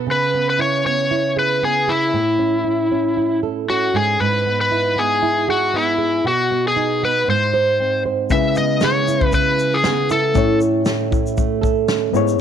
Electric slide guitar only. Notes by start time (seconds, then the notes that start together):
0.11 B4
0.50 B4
0.62 C#5
0.86 C#5
1.39 B4
1.65 G#4
1.89 E4
3.70 F#4
3.96 G#4
4.20 B4
4.61 B4
4.99 G#4
5.51 F#4
5.76 E4
6.28 F#4
6.68 G#4
7.05 B4
7.30 C5
8.32 E5
8.58 D#5
8.84 C#5
9.35 B4
9.74 G#4
10.12 A4